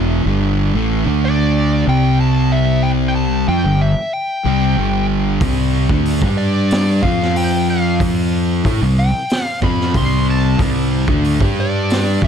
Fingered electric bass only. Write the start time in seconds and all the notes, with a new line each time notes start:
Already playing: E1
0.25 G1
0.74 A1
1.06 D2
1.87 C2
3.48 F2
3.64 G1
4.45 C2
4.78 G1
5.41 C2
5.90 D2
6.22 G2
7.03 F2
8.65 A2
8.81 C2
9.62 F2
9.94 C2
10.59 C2
11.07 D2
11.41 G2
12.22 F2